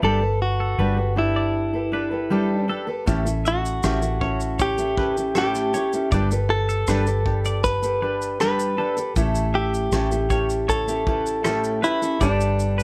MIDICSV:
0, 0, Header, 1, 6, 480
1, 0, Start_track
1, 0, Tempo, 761228
1, 18, Time_signature, 4, 2, 24, 8
1, 8090, End_track
2, 0, Start_track
2, 0, Title_t, "Clean electric guitar"
2, 0, Program_c, 0, 27
2, 20, Note_on_c, 0, 74, 91
2, 133, Note_off_c, 0, 74, 0
2, 380, Note_on_c, 0, 69, 67
2, 493, Note_off_c, 0, 69, 0
2, 497, Note_on_c, 0, 71, 70
2, 611, Note_off_c, 0, 71, 0
2, 859, Note_on_c, 0, 74, 70
2, 972, Note_off_c, 0, 74, 0
2, 1219, Note_on_c, 0, 71, 67
2, 1462, Note_off_c, 0, 71, 0
2, 1462, Note_on_c, 0, 69, 76
2, 1574, Note_off_c, 0, 69, 0
2, 1699, Note_on_c, 0, 69, 81
2, 1812, Note_off_c, 0, 69, 0
2, 2178, Note_on_c, 0, 76, 63
2, 2292, Note_off_c, 0, 76, 0
2, 2657, Note_on_c, 0, 73, 71
2, 2772, Note_off_c, 0, 73, 0
2, 2897, Note_on_c, 0, 73, 80
2, 3126, Note_off_c, 0, 73, 0
2, 3140, Note_on_c, 0, 71, 68
2, 3253, Note_off_c, 0, 71, 0
2, 3378, Note_on_c, 0, 69, 78
2, 3492, Note_off_c, 0, 69, 0
2, 3620, Note_on_c, 0, 73, 74
2, 3733, Note_off_c, 0, 73, 0
2, 3859, Note_on_c, 0, 74, 94
2, 3973, Note_off_c, 0, 74, 0
2, 4217, Note_on_c, 0, 69, 66
2, 4332, Note_off_c, 0, 69, 0
2, 4339, Note_on_c, 0, 71, 73
2, 4453, Note_off_c, 0, 71, 0
2, 4702, Note_on_c, 0, 74, 71
2, 4814, Note_off_c, 0, 74, 0
2, 5059, Note_on_c, 0, 71, 69
2, 5299, Note_off_c, 0, 71, 0
2, 5299, Note_on_c, 0, 69, 77
2, 5413, Note_off_c, 0, 69, 0
2, 5538, Note_on_c, 0, 69, 85
2, 5652, Note_off_c, 0, 69, 0
2, 6016, Note_on_c, 0, 76, 70
2, 6132, Note_off_c, 0, 76, 0
2, 6497, Note_on_c, 0, 73, 70
2, 6612, Note_off_c, 0, 73, 0
2, 6737, Note_on_c, 0, 73, 80
2, 6978, Note_off_c, 0, 73, 0
2, 6978, Note_on_c, 0, 71, 66
2, 7093, Note_off_c, 0, 71, 0
2, 7215, Note_on_c, 0, 69, 78
2, 7332, Note_off_c, 0, 69, 0
2, 7456, Note_on_c, 0, 71, 75
2, 7572, Note_off_c, 0, 71, 0
2, 7698, Note_on_c, 0, 74, 91
2, 7813, Note_off_c, 0, 74, 0
2, 8059, Note_on_c, 0, 71, 72
2, 8090, Note_off_c, 0, 71, 0
2, 8090, End_track
3, 0, Start_track
3, 0, Title_t, "Clean electric guitar"
3, 0, Program_c, 1, 27
3, 29, Note_on_c, 1, 69, 94
3, 247, Note_off_c, 1, 69, 0
3, 265, Note_on_c, 1, 66, 79
3, 747, Note_on_c, 1, 64, 77
3, 755, Note_off_c, 1, 66, 0
3, 1677, Note_off_c, 1, 64, 0
3, 2193, Note_on_c, 1, 66, 88
3, 2908, Note_off_c, 1, 66, 0
3, 2911, Note_on_c, 1, 67, 95
3, 3385, Note_off_c, 1, 67, 0
3, 3393, Note_on_c, 1, 67, 83
3, 3840, Note_off_c, 1, 67, 0
3, 4100, Note_on_c, 1, 69, 82
3, 4794, Note_off_c, 1, 69, 0
3, 4817, Note_on_c, 1, 71, 95
3, 5295, Note_off_c, 1, 71, 0
3, 5303, Note_on_c, 1, 71, 86
3, 5756, Note_off_c, 1, 71, 0
3, 6023, Note_on_c, 1, 67, 96
3, 6742, Note_off_c, 1, 67, 0
3, 6744, Note_on_c, 1, 69, 97
3, 7437, Note_off_c, 1, 69, 0
3, 7466, Note_on_c, 1, 64, 91
3, 7710, Note_off_c, 1, 64, 0
3, 7711, Note_on_c, 1, 62, 75
3, 8090, Note_off_c, 1, 62, 0
3, 8090, End_track
4, 0, Start_track
4, 0, Title_t, "Steel-string acoustic guitar"
4, 0, Program_c, 2, 25
4, 14, Note_on_c, 2, 55, 76
4, 17, Note_on_c, 2, 62, 78
4, 19, Note_on_c, 2, 67, 79
4, 21, Note_on_c, 2, 71, 84
4, 24, Note_on_c, 2, 69, 80
4, 124, Note_off_c, 2, 69, 0
4, 130, Note_off_c, 2, 71, 0
4, 132, Note_on_c, 2, 69, 49
4, 136, Note_off_c, 2, 55, 0
4, 137, Note_off_c, 2, 62, 0
4, 138, Note_off_c, 2, 67, 0
4, 138, Note_on_c, 2, 71, 41
4, 494, Note_off_c, 2, 69, 0
4, 494, Note_off_c, 2, 71, 0
4, 495, Note_on_c, 2, 55, 72
4, 498, Note_on_c, 2, 62, 75
4, 499, Note_on_c, 2, 67, 66
4, 501, Note_on_c, 2, 71, 79
4, 503, Note_on_c, 2, 69, 77
4, 604, Note_off_c, 2, 69, 0
4, 611, Note_on_c, 2, 69, 51
4, 613, Note_off_c, 2, 71, 0
4, 616, Note_off_c, 2, 55, 0
4, 618, Note_off_c, 2, 62, 0
4, 618, Note_off_c, 2, 67, 0
4, 621, Note_on_c, 2, 71, 41
4, 626, Note_on_c, 2, 67, 38
4, 727, Note_off_c, 2, 67, 0
4, 730, Note_off_c, 2, 71, 0
4, 730, Note_on_c, 2, 62, 53
4, 734, Note_off_c, 2, 69, 0
4, 734, Note_on_c, 2, 67, 51
4, 738, Note_on_c, 2, 71, 58
4, 743, Note_on_c, 2, 69, 58
4, 1086, Note_off_c, 2, 69, 0
4, 1094, Note_off_c, 2, 62, 0
4, 1094, Note_on_c, 2, 69, 53
4, 1095, Note_off_c, 2, 71, 0
4, 1096, Note_off_c, 2, 67, 0
4, 1103, Note_on_c, 2, 71, 42
4, 1108, Note_on_c, 2, 67, 37
4, 1208, Note_off_c, 2, 67, 0
4, 1210, Note_on_c, 2, 62, 52
4, 1211, Note_off_c, 2, 71, 0
4, 1215, Note_on_c, 2, 67, 59
4, 1216, Note_off_c, 2, 69, 0
4, 1219, Note_on_c, 2, 71, 53
4, 1225, Note_on_c, 2, 69, 64
4, 1323, Note_off_c, 2, 69, 0
4, 1330, Note_off_c, 2, 71, 0
4, 1331, Note_on_c, 2, 69, 47
4, 1334, Note_off_c, 2, 62, 0
4, 1336, Note_off_c, 2, 67, 0
4, 1338, Note_on_c, 2, 71, 39
4, 1345, Note_on_c, 2, 67, 41
4, 1451, Note_off_c, 2, 67, 0
4, 1452, Note_off_c, 2, 71, 0
4, 1452, Note_on_c, 2, 55, 86
4, 1454, Note_off_c, 2, 69, 0
4, 1456, Note_on_c, 2, 62, 82
4, 1458, Note_on_c, 2, 67, 82
4, 1460, Note_on_c, 2, 71, 84
4, 1461, Note_on_c, 2, 69, 79
4, 1683, Note_off_c, 2, 62, 0
4, 1689, Note_off_c, 2, 67, 0
4, 1690, Note_on_c, 2, 62, 60
4, 1692, Note_off_c, 2, 71, 0
4, 1695, Note_off_c, 2, 55, 0
4, 1697, Note_off_c, 2, 69, 0
4, 1697, Note_on_c, 2, 67, 61
4, 1699, Note_on_c, 2, 71, 68
4, 1704, Note_on_c, 2, 69, 67
4, 1802, Note_off_c, 2, 69, 0
4, 1809, Note_on_c, 2, 69, 56
4, 1810, Note_off_c, 2, 71, 0
4, 1814, Note_off_c, 2, 62, 0
4, 1815, Note_off_c, 2, 67, 0
4, 1818, Note_on_c, 2, 71, 51
4, 1823, Note_on_c, 2, 67, 45
4, 1928, Note_off_c, 2, 67, 0
4, 1930, Note_on_c, 2, 45, 78
4, 1931, Note_off_c, 2, 69, 0
4, 1932, Note_on_c, 2, 57, 80
4, 1934, Note_on_c, 2, 61, 82
4, 1935, Note_on_c, 2, 67, 82
4, 1936, Note_off_c, 2, 71, 0
4, 1938, Note_on_c, 2, 64, 93
4, 1938, Note_on_c, 2, 69, 93
4, 2042, Note_off_c, 2, 69, 0
4, 2048, Note_off_c, 2, 64, 0
4, 2049, Note_on_c, 2, 69, 46
4, 2054, Note_off_c, 2, 45, 0
4, 2055, Note_off_c, 2, 57, 0
4, 2055, Note_on_c, 2, 64, 48
4, 2056, Note_off_c, 2, 61, 0
4, 2056, Note_off_c, 2, 67, 0
4, 2063, Note_on_c, 2, 61, 38
4, 2412, Note_off_c, 2, 61, 0
4, 2414, Note_off_c, 2, 69, 0
4, 2415, Note_off_c, 2, 64, 0
4, 2416, Note_on_c, 2, 45, 71
4, 2418, Note_on_c, 2, 57, 74
4, 2420, Note_on_c, 2, 61, 71
4, 2420, Note_on_c, 2, 67, 80
4, 2422, Note_on_c, 2, 64, 81
4, 2424, Note_on_c, 2, 69, 85
4, 2527, Note_off_c, 2, 69, 0
4, 2531, Note_off_c, 2, 64, 0
4, 2534, Note_on_c, 2, 69, 44
4, 2535, Note_off_c, 2, 67, 0
4, 2537, Note_off_c, 2, 45, 0
4, 2538, Note_off_c, 2, 57, 0
4, 2538, Note_on_c, 2, 64, 39
4, 2539, Note_off_c, 2, 61, 0
4, 2542, Note_on_c, 2, 67, 41
4, 2546, Note_on_c, 2, 61, 37
4, 2646, Note_off_c, 2, 61, 0
4, 2653, Note_on_c, 2, 61, 52
4, 2655, Note_off_c, 2, 64, 0
4, 2656, Note_off_c, 2, 69, 0
4, 2660, Note_off_c, 2, 67, 0
4, 2663, Note_on_c, 2, 64, 55
4, 2667, Note_on_c, 2, 69, 63
4, 3006, Note_off_c, 2, 69, 0
4, 3012, Note_off_c, 2, 64, 0
4, 3013, Note_on_c, 2, 69, 50
4, 3016, Note_off_c, 2, 61, 0
4, 3020, Note_on_c, 2, 64, 47
4, 3024, Note_on_c, 2, 67, 43
4, 3028, Note_on_c, 2, 61, 38
4, 3128, Note_off_c, 2, 61, 0
4, 3134, Note_off_c, 2, 67, 0
4, 3135, Note_on_c, 2, 61, 56
4, 3136, Note_off_c, 2, 69, 0
4, 3139, Note_off_c, 2, 64, 0
4, 3141, Note_on_c, 2, 67, 55
4, 3146, Note_on_c, 2, 64, 62
4, 3150, Note_on_c, 2, 69, 69
4, 3250, Note_off_c, 2, 69, 0
4, 3257, Note_off_c, 2, 61, 0
4, 3257, Note_off_c, 2, 64, 0
4, 3257, Note_on_c, 2, 69, 42
4, 3260, Note_off_c, 2, 67, 0
4, 3264, Note_on_c, 2, 64, 39
4, 3269, Note_on_c, 2, 67, 37
4, 3273, Note_on_c, 2, 61, 40
4, 3375, Note_off_c, 2, 61, 0
4, 3378, Note_off_c, 2, 67, 0
4, 3378, Note_off_c, 2, 69, 0
4, 3378, Note_on_c, 2, 45, 68
4, 3381, Note_off_c, 2, 64, 0
4, 3381, Note_on_c, 2, 57, 75
4, 3383, Note_on_c, 2, 61, 71
4, 3386, Note_on_c, 2, 67, 77
4, 3388, Note_on_c, 2, 64, 82
4, 3388, Note_on_c, 2, 69, 80
4, 3614, Note_off_c, 2, 61, 0
4, 3618, Note_off_c, 2, 45, 0
4, 3620, Note_off_c, 2, 57, 0
4, 3621, Note_off_c, 2, 67, 0
4, 3621, Note_on_c, 2, 61, 53
4, 3623, Note_off_c, 2, 64, 0
4, 3623, Note_off_c, 2, 69, 0
4, 3628, Note_on_c, 2, 67, 56
4, 3631, Note_on_c, 2, 64, 61
4, 3637, Note_on_c, 2, 69, 59
4, 3733, Note_off_c, 2, 69, 0
4, 3738, Note_off_c, 2, 64, 0
4, 3740, Note_off_c, 2, 61, 0
4, 3740, Note_on_c, 2, 69, 49
4, 3743, Note_off_c, 2, 67, 0
4, 3746, Note_on_c, 2, 64, 49
4, 3751, Note_on_c, 2, 67, 44
4, 3752, Note_on_c, 2, 61, 47
4, 3859, Note_off_c, 2, 69, 0
4, 3862, Note_off_c, 2, 64, 0
4, 3862, Note_off_c, 2, 67, 0
4, 3864, Note_on_c, 2, 55, 78
4, 3865, Note_off_c, 2, 61, 0
4, 3868, Note_on_c, 2, 62, 75
4, 3870, Note_on_c, 2, 67, 80
4, 3871, Note_on_c, 2, 71, 78
4, 3874, Note_on_c, 2, 69, 77
4, 3975, Note_off_c, 2, 69, 0
4, 3981, Note_off_c, 2, 55, 0
4, 3981, Note_off_c, 2, 71, 0
4, 3983, Note_off_c, 2, 62, 0
4, 3983, Note_on_c, 2, 69, 49
4, 3984, Note_off_c, 2, 67, 0
4, 3989, Note_on_c, 2, 71, 47
4, 3994, Note_on_c, 2, 67, 39
4, 4337, Note_off_c, 2, 67, 0
4, 4338, Note_on_c, 2, 55, 66
4, 4339, Note_off_c, 2, 71, 0
4, 4341, Note_off_c, 2, 69, 0
4, 4342, Note_on_c, 2, 62, 84
4, 4344, Note_on_c, 2, 67, 75
4, 4347, Note_on_c, 2, 71, 80
4, 4349, Note_on_c, 2, 69, 90
4, 4449, Note_off_c, 2, 69, 0
4, 4456, Note_off_c, 2, 71, 0
4, 4456, Note_on_c, 2, 69, 45
4, 4459, Note_off_c, 2, 55, 0
4, 4460, Note_off_c, 2, 62, 0
4, 4461, Note_off_c, 2, 67, 0
4, 4463, Note_on_c, 2, 71, 48
4, 4468, Note_on_c, 2, 67, 41
4, 4570, Note_off_c, 2, 67, 0
4, 4574, Note_on_c, 2, 62, 49
4, 4575, Note_off_c, 2, 71, 0
4, 4577, Note_on_c, 2, 67, 60
4, 4578, Note_off_c, 2, 69, 0
4, 4582, Note_on_c, 2, 71, 54
4, 4587, Note_on_c, 2, 69, 59
4, 4927, Note_off_c, 2, 69, 0
4, 4934, Note_off_c, 2, 71, 0
4, 4934, Note_on_c, 2, 69, 50
4, 4936, Note_off_c, 2, 62, 0
4, 4938, Note_off_c, 2, 67, 0
4, 4942, Note_on_c, 2, 71, 48
4, 4948, Note_on_c, 2, 67, 45
4, 5052, Note_off_c, 2, 67, 0
4, 5056, Note_off_c, 2, 71, 0
4, 5056, Note_on_c, 2, 62, 54
4, 5057, Note_off_c, 2, 69, 0
4, 5060, Note_on_c, 2, 67, 59
4, 5064, Note_on_c, 2, 71, 58
4, 5070, Note_on_c, 2, 69, 59
4, 5292, Note_off_c, 2, 62, 0
4, 5296, Note_off_c, 2, 67, 0
4, 5296, Note_off_c, 2, 71, 0
4, 5298, Note_on_c, 2, 55, 80
4, 5299, Note_off_c, 2, 69, 0
4, 5300, Note_on_c, 2, 62, 76
4, 5303, Note_on_c, 2, 67, 85
4, 5304, Note_on_c, 2, 71, 79
4, 5307, Note_on_c, 2, 69, 79
4, 5525, Note_off_c, 2, 62, 0
4, 5530, Note_off_c, 2, 67, 0
4, 5532, Note_on_c, 2, 62, 57
4, 5535, Note_off_c, 2, 71, 0
4, 5537, Note_on_c, 2, 67, 60
4, 5539, Note_off_c, 2, 55, 0
4, 5539, Note_off_c, 2, 69, 0
4, 5542, Note_on_c, 2, 71, 59
4, 5547, Note_on_c, 2, 69, 69
4, 5646, Note_off_c, 2, 69, 0
4, 5653, Note_on_c, 2, 69, 50
4, 5654, Note_off_c, 2, 71, 0
4, 5656, Note_off_c, 2, 62, 0
4, 5658, Note_off_c, 2, 67, 0
4, 5661, Note_on_c, 2, 71, 48
4, 5666, Note_on_c, 2, 67, 45
4, 5775, Note_off_c, 2, 67, 0
4, 5775, Note_on_c, 2, 45, 69
4, 5776, Note_off_c, 2, 69, 0
4, 5779, Note_on_c, 2, 57, 70
4, 5780, Note_off_c, 2, 71, 0
4, 5781, Note_on_c, 2, 61, 73
4, 5782, Note_on_c, 2, 67, 78
4, 5783, Note_on_c, 2, 64, 83
4, 5784, Note_on_c, 2, 69, 91
4, 6251, Note_off_c, 2, 45, 0
4, 6254, Note_off_c, 2, 61, 0
4, 6258, Note_off_c, 2, 57, 0
4, 6258, Note_off_c, 2, 64, 0
4, 6258, Note_on_c, 2, 45, 78
4, 6260, Note_on_c, 2, 57, 68
4, 6261, Note_on_c, 2, 61, 77
4, 6262, Note_off_c, 2, 67, 0
4, 6264, Note_off_c, 2, 69, 0
4, 6264, Note_on_c, 2, 67, 76
4, 6265, Note_on_c, 2, 64, 75
4, 6267, Note_on_c, 2, 69, 78
4, 6367, Note_off_c, 2, 69, 0
4, 6372, Note_off_c, 2, 64, 0
4, 6375, Note_off_c, 2, 67, 0
4, 6375, Note_on_c, 2, 69, 50
4, 6379, Note_off_c, 2, 45, 0
4, 6380, Note_off_c, 2, 57, 0
4, 6380, Note_off_c, 2, 61, 0
4, 6380, Note_on_c, 2, 64, 45
4, 6383, Note_on_c, 2, 67, 40
4, 6388, Note_on_c, 2, 61, 42
4, 6487, Note_off_c, 2, 61, 0
4, 6492, Note_off_c, 2, 67, 0
4, 6494, Note_on_c, 2, 61, 59
4, 6497, Note_off_c, 2, 64, 0
4, 6497, Note_off_c, 2, 69, 0
4, 6500, Note_on_c, 2, 67, 58
4, 6504, Note_on_c, 2, 64, 56
4, 6508, Note_on_c, 2, 69, 59
4, 6847, Note_off_c, 2, 69, 0
4, 6852, Note_off_c, 2, 64, 0
4, 6854, Note_on_c, 2, 69, 57
4, 6857, Note_off_c, 2, 61, 0
4, 6858, Note_off_c, 2, 67, 0
4, 6860, Note_on_c, 2, 64, 46
4, 6865, Note_on_c, 2, 67, 45
4, 6868, Note_on_c, 2, 61, 46
4, 6970, Note_off_c, 2, 61, 0
4, 6975, Note_off_c, 2, 67, 0
4, 6977, Note_off_c, 2, 69, 0
4, 6977, Note_on_c, 2, 61, 58
4, 6979, Note_off_c, 2, 64, 0
4, 6982, Note_on_c, 2, 67, 66
4, 6986, Note_on_c, 2, 64, 67
4, 6991, Note_on_c, 2, 69, 72
4, 7210, Note_off_c, 2, 61, 0
4, 7212, Note_off_c, 2, 67, 0
4, 7213, Note_on_c, 2, 45, 82
4, 7215, Note_off_c, 2, 64, 0
4, 7215, Note_off_c, 2, 69, 0
4, 7215, Note_on_c, 2, 57, 79
4, 7218, Note_on_c, 2, 61, 76
4, 7219, Note_on_c, 2, 67, 79
4, 7222, Note_on_c, 2, 64, 83
4, 7223, Note_on_c, 2, 69, 91
4, 7448, Note_off_c, 2, 61, 0
4, 7452, Note_off_c, 2, 67, 0
4, 7455, Note_on_c, 2, 61, 54
4, 7457, Note_off_c, 2, 45, 0
4, 7458, Note_off_c, 2, 57, 0
4, 7458, Note_off_c, 2, 64, 0
4, 7460, Note_on_c, 2, 67, 60
4, 7462, Note_off_c, 2, 69, 0
4, 7465, Note_on_c, 2, 64, 62
4, 7468, Note_on_c, 2, 69, 67
4, 7569, Note_off_c, 2, 69, 0
4, 7573, Note_off_c, 2, 64, 0
4, 7576, Note_on_c, 2, 69, 51
4, 7578, Note_off_c, 2, 61, 0
4, 7578, Note_off_c, 2, 67, 0
4, 7580, Note_on_c, 2, 64, 46
4, 7586, Note_on_c, 2, 67, 43
4, 7588, Note_on_c, 2, 61, 46
4, 7692, Note_off_c, 2, 67, 0
4, 7694, Note_off_c, 2, 61, 0
4, 7695, Note_on_c, 2, 55, 79
4, 7696, Note_off_c, 2, 69, 0
4, 7697, Note_on_c, 2, 62, 75
4, 7698, Note_off_c, 2, 64, 0
4, 7699, Note_on_c, 2, 67, 77
4, 7700, Note_on_c, 2, 71, 83
4, 7704, Note_on_c, 2, 69, 85
4, 8090, Note_off_c, 2, 55, 0
4, 8090, Note_off_c, 2, 62, 0
4, 8090, Note_off_c, 2, 67, 0
4, 8090, Note_off_c, 2, 69, 0
4, 8090, Note_off_c, 2, 71, 0
4, 8090, End_track
5, 0, Start_track
5, 0, Title_t, "Fingered electric bass"
5, 0, Program_c, 3, 33
5, 17, Note_on_c, 3, 31, 88
5, 472, Note_off_c, 3, 31, 0
5, 494, Note_on_c, 3, 31, 84
5, 1910, Note_off_c, 3, 31, 0
5, 1941, Note_on_c, 3, 33, 100
5, 2394, Note_off_c, 3, 33, 0
5, 2420, Note_on_c, 3, 33, 84
5, 3834, Note_off_c, 3, 33, 0
5, 3859, Note_on_c, 3, 31, 93
5, 4314, Note_off_c, 3, 31, 0
5, 4339, Note_on_c, 3, 31, 96
5, 5754, Note_off_c, 3, 31, 0
5, 5776, Note_on_c, 3, 33, 93
5, 6233, Note_off_c, 3, 33, 0
5, 6255, Note_on_c, 3, 33, 86
5, 7673, Note_off_c, 3, 33, 0
5, 7697, Note_on_c, 3, 31, 97
5, 8090, Note_off_c, 3, 31, 0
5, 8090, End_track
6, 0, Start_track
6, 0, Title_t, "Drums"
6, 1939, Note_on_c, 9, 36, 110
6, 1940, Note_on_c, 9, 82, 57
6, 2002, Note_off_c, 9, 36, 0
6, 2003, Note_off_c, 9, 82, 0
6, 2060, Note_on_c, 9, 82, 52
6, 2123, Note_off_c, 9, 82, 0
6, 2181, Note_on_c, 9, 82, 47
6, 2244, Note_off_c, 9, 82, 0
6, 2305, Note_on_c, 9, 82, 44
6, 2368, Note_off_c, 9, 82, 0
6, 2417, Note_on_c, 9, 82, 75
6, 2421, Note_on_c, 9, 37, 109
6, 2480, Note_off_c, 9, 82, 0
6, 2484, Note_off_c, 9, 37, 0
6, 2535, Note_on_c, 9, 82, 43
6, 2599, Note_off_c, 9, 82, 0
6, 2656, Note_on_c, 9, 36, 82
6, 2719, Note_off_c, 9, 36, 0
6, 2777, Note_on_c, 9, 82, 44
6, 2840, Note_off_c, 9, 82, 0
6, 2896, Note_on_c, 9, 82, 66
6, 2898, Note_on_c, 9, 36, 96
6, 2959, Note_off_c, 9, 82, 0
6, 2961, Note_off_c, 9, 36, 0
6, 3016, Note_on_c, 9, 82, 50
6, 3079, Note_off_c, 9, 82, 0
6, 3137, Note_on_c, 9, 36, 93
6, 3200, Note_off_c, 9, 36, 0
6, 3262, Note_on_c, 9, 82, 46
6, 3325, Note_off_c, 9, 82, 0
6, 3374, Note_on_c, 9, 37, 104
6, 3376, Note_on_c, 9, 82, 56
6, 3437, Note_off_c, 9, 37, 0
6, 3439, Note_off_c, 9, 82, 0
6, 3500, Note_on_c, 9, 82, 51
6, 3501, Note_on_c, 9, 37, 36
6, 3563, Note_off_c, 9, 82, 0
6, 3564, Note_off_c, 9, 37, 0
6, 3619, Note_on_c, 9, 82, 44
6, 3682, Note_off_c, 9, 82, 0
6, 3740, Note_on_c, 9, 82, 51
6, 3803, Note_off_c, 9, 82, 0
6, 3858, Note_on_c, 9, 36, 107
6, 3859, Note_on_c, 9, 82, 52
6, 3921, Note_off_c, 9, 36, 0
6, 3922, Note_off_c, 9, 82, 0
6, 3981, Note_on_c, 9, 82, 50
6, 4044, Note_off_c, 9, 82, 0
6, 4221, Note_on_c, 9, 82, 45
6, 4284, Note_off_c, 9, 82, 0
6, 4334, Note_on_c, 9, 82, 75
6, 4338, Note_on_c, 9, 37, 109
6, 4397, Note_off_c, 9, 82, 0
6, 4401, Note_off_c, 9, 37, 0
6, 4456, Note_on_c, 9, 82, 41
6, 4519, Note_off_c, 9, 82, 0
6, 4576, Note_on_c, 9, 36, 82
6, 4639, Note_off_c, 9, 36, 0
6, 4698, Note_on_c, 9, 82, 45
6, 4761, Note_off_c, 9, 82, 0
6, 4818, Note_on_c, 9, 36, 92
6, 4819, Note_on_c, 9, 82, 64
6, 4881, Note_off_c, 9, 36, 0
6, 4882, Note_off_c, 9, 82, 0
6, 4938, Note_on_c, 9, 82, 54
6, 5001, Note_off_c, 9, 82, 0
6, 5182, Note_on_c, 9, 82, 49
6, 5245, Note_off_c, 9, 82, 0
6, 5298, Note_on_c, 9, 37, 100
6, 5300, Note_on_c, 9, 82, 61
6, 5361, Note_off_c, 9, 37, 0
6, 5364, Note_off_c, 9, 82, 0
6, 5419, Note_on_c, 9, 82, 47
6, 5482, Note_off_c, 9, 82, 0
6, 5658, Note_on_c, 9, 82, 48
6, 5721, Note_off_c, 9, 82, 0
6, 5777, Note_on_c, 9, 82, 56
6, 5778, Note_on_c, 9, 36, 107
6, 5840, Note_off_c, 9, 82, 0
6, 5841, Note_off_c, 9, 36, 0
6, 5897, Note_on_c, 9, 82, 53
6, 5960, Note_off_c, 9, 82, 0
6, 6143, Note_on_c, 9, 82, 45
6, 6206, Note_off_c, 9, 82, 0
6, 6256, Note_on_c, 9, 82, 77
6, 6259, Note_on_c, 9, 37, 116
6, 6319, Note_off_c, 9, 82, 0
6, 6322, Note_off_c, 9, 37, 0
6, 6379, Note_on_c, 9, 82, 45
6, 6442, Note_off_c, 9, 82, 0
6, 6496, Note_on_c, 9, 36, 81
6, 6496, Note_on_c, 9, 82, 49
6, 6560, Note_off_c, 9, 36, 0
6, 6560, Note_off_c, 9, 82, 0
6, 6619, Note_on_c, 9, 82, 46
6, 6682, Note_off_c, 9, 82, 0
6, 6740, Note_on_c, 9, 36, 83
6, 6743, Note_on_c, 9, 82, 65
6, 6803, Note_off_c, 9, 36, 0
6, 6807, Note_off_c, 9, 82, 0
6, 6863, Note_on_c, 9, 82, 57
6, 6926, Note_off_c, 9, 82, 0
6, 6979, Note_on_c, 9, 36, 92
6, 7042, Note_off_c, 9, 36, 0
6, 7103, Note_on_c, 9, 82, 50
6, 7166, Note_off_c, 9, 82, 0
6, 7217, Note_on_c, 9, 37, 106
6, 7219, Note_on_c, 9, 82, 60
6, 7280, Note_off_c, 9, 37, 0
6, 7282, Note_off_c, 9, 82, 0
6, 7340, Note_on_c, 9, 82, 48
6, 7403, Note_off_c, 9, 82, 0
6, 7464, Note_on_c, 9, 82, 44
6, 7527, Note_off_c, 9, 82, 0
6, 7582, Note_on_c, 9, 82, 50
6, 7646, Note_off_c, 9, 82, 0
6, 7699, Note_on_c, 9, 36, 105
6, 7700, Note_on_c, 9, 82, 57
6, 7762, Note_off_c, 9, 36, 0
6, 7763, Note_off_c, 9, 82, 0
6, 7822, Note_on_c, 9, 82, 51
6, 7886, Note_off_c, 9, 82, 0
6, 7942, Note_on_c, 9, 82, 46
6, 8005, Note_off_c, 9, 82, 0
6, 8068, Note_on_c, 9, 82, 46
6, 8090, Note_off_c, 9, 82, 0
6, 8090, End_track
0, 0, End_of_file